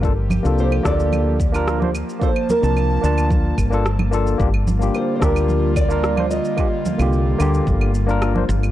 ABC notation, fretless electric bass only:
X:1
M:4/4
L:1/16
Q:1/4=110
K:Eblyd
V:1 name="Fretless electric bass" clef=bass
G,,,3 C,,3 D,,8- D,, z | z3 C,,3 D,,4 G,,,6 | G,,,4 z2 D,,8- D,, z | z3 C,,3 D,, z G,,,6 G,,,2 |]